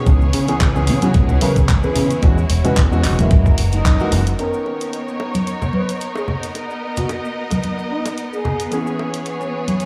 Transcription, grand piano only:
0.06 E3 B3 C#4 G#4
0.48 E3 B3 C#4 G#4
0.75 E3 B3 C#4 G#4
1.02 E3 B3 C#4 F#4
1.41 E3 B3 C#4 A#4
1.83 E3 B3 C#4 B4
2.22 E3 G#3 C#4 F#4
2.64 E3 G#3 C#4 F#4
2.91 E3 G#3 C#4 F#4
3.18 E3 G#3 A#3 E4
3.99 E3 G#3 A#3 F#4
4.38 D#3 B3 C#4 A#4
8.71 E3 B3 C#4 G#4

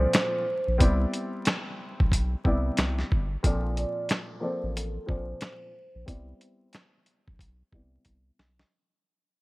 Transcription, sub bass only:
0.68 A#1
0.81 C2
2.00 B1
2.45 C2
2.78 C2
3.12 G1
3.44 A#1
4.63 A1
5.09 A#1
5.95 A#1
6.08 C2
7.28 B1
7.73 C2
8.06 C2
8.39 B1

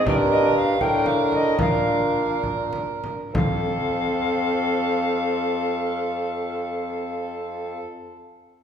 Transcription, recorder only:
0.06 D5
0.31 D#5
0.56 F5
0.81 G5
1.06 F5
1.33 D#5
1.60 F5
3.34 F5

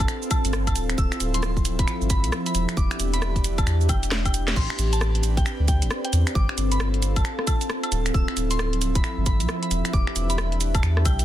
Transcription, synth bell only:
0.00 A5
0.31 A5
0.67 A5
0.98 E6
1.34 C6
1.79 B5
2.10 B5
2.46 B5
2.77 D6
3.14 B5
3.58 A5
3.89 G5
4.25 G5
4.56 C6
4.93 A5
5.37 G5
5.68 G5
6.04 G5
6.35 D6
6.71 B5
7.16 A5
7.47 A5
7.83 A5
8.14 E6
8.51 C6
8.95 B5
9.26 B5
9.63 B5
9.93 D6
10.30 B5
10.75 A5
11.05 G5

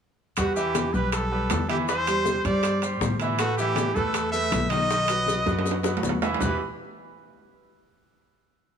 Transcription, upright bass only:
0.38 E2
0.94 B1
1.51 E2
2.45 G2
3.01 A2
3.95 E2
4.52 B1
5.46 F#2
6.03 E2
6.41 E2

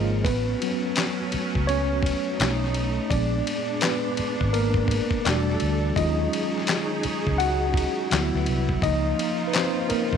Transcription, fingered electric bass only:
Already playing: G#1
0.25 A1
1.34 muted fingered electric bass stroke
1.56 C#2
2.40 B1
3.11 A#1
4.19 muted fingered electric bass stroke
4.41 G#1
5.26 E1
5.62 D2
5.97 D#2
7.05 muted fingered electric bass stroke
7.27 C#2
8.12 D2
8.34 D2
8.48 C2
8.83 C#2
9.91 muted fingered electric bass stroke
10.13 A#1

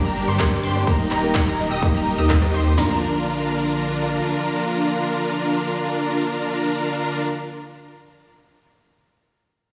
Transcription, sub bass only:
0.04 G1
0.28 G2
0.64 G2
0.87 D#1
1.11 D#1
1.47 D#1
1.71 D#1
1.94 D#1
2.18 D#2
2.54 D#2
2.78 A#1

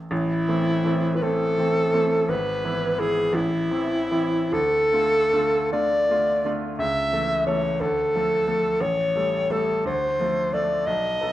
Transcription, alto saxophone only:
0.12 E4
1.16 B4
1.23 A4
2.30 B4
3.00 G#4
3.35 E4
4.53 A4
5.73 D5
6.79 E5
7.47 C#5
7.81 A4
8.82 C#5
9.52 A4
9.86 C5
10.54 D5
10.87 D#5

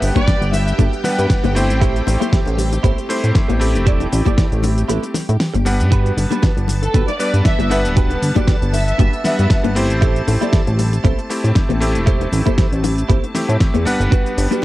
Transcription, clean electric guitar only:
0.15 D4 F#4 G4 B4
0.53 muted clean electric guitar stroke
0.78 D4 F#4 G4 A4
1.04 muted clean electric guitar stroke
1.44 muted clean electric guitar stroke
1.56 muted clean electric guitar stroke
1.81 E4 G4 A4 C5
2.20 E4 G4 A4 C5
2.58 muted clean electric guitar stroke
2.83 E4 G4 A4 C5
3.09 muted clean electric guitar stroke
3.48 muted clean electric guitar stroke
3.60 muted clean electric guitar stroke
3.86 E4 G4 A4 D5
4.25 E4 G4 A4 D5
4.63 muted clean electric guitar stroke
4.88 E4 G4 A4 B4
5.14 muted clean electric guitar stroke
5.54 muted clean electric guitar stroke
5.66 muted clean electric guitar stroke
5.91 D4 F#4 G4 B4
6.31 D4 F#4 G4 B4
6.68 muted clean electric guitar stroke
6.94 D4 F#4 G4 B4
7.19 muted clean electric guitar stroke
7.59 muted clean electric guitar stroke
7.71 muted clean electric guitar stroke
7.96 D4 F#4 G4 B4
8.35 D4 F#4 G4 D5
8.73 muted clean electric guitar stroke
8.98 D4 F#4 G4 B4
9.24 muted clean electric guitar stroke
9.64 muted clean electric guitar stroke
9.76 muted clean electric guitar stroke
10.01 E4 G4 A4 C5
10.41 E4 G4 A4 D5
10.78 muted clean electric guitar stroke
11.04 E4 G4 A4 C5
11.30 muted clean electric guitar stroke
11.69 muted clean electric guitar stroke
11.81 muted clean electric guitar stroke
12.06 E4 G4 A4 C5
12.46 E4 G4 A4 C5
12.83 muted clean electric guitar stroke
13.09 E4 G4 A4 C5
13.35 muted clean electric guitar stroke
13.74 muted clean electric guitar stroke
13.86 muted clean electric guitar stroke
14.11 D4 F#4 G4 B4
14.51 D4 F#4 G4 B4

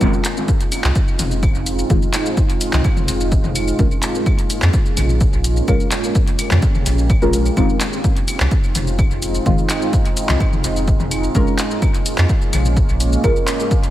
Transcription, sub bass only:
0.01 F1
0.84 C2
1.19 F1
1.55 F1
1.90 F1
2.73 C2
3.08 F1
3.44 F1
3.79 A#1
4.62 F2
4.97 A#1
5.33 A#1
5.68 A#1
6.51 F2
6.86 A#1
7.22 A#1
7.57 F1
8.40 C2
8.75 F1
9.11 F1
9.46 F1
10.29 C2
10.64 F1
11.00 F1
11.35 A#1
12.18 F2
12.53 A#1
12.89 A#1
13.24 A#1

